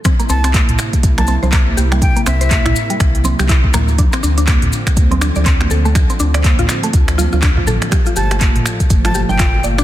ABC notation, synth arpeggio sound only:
X:1
M:4/4
L:1/16
Q:"Swing 16ths" 1/4=122
K:Cmix
V:1 name="Synth arpeggio sound"
C B, C C z4 z B, C c B, z G G, | z B, C c z E z G, z2 C G E z B, z | D C D D z4 z C D d C z A A, | z C D d z F z A, z2 F F D F A z |
G F G G z4 z F G g F z d D |]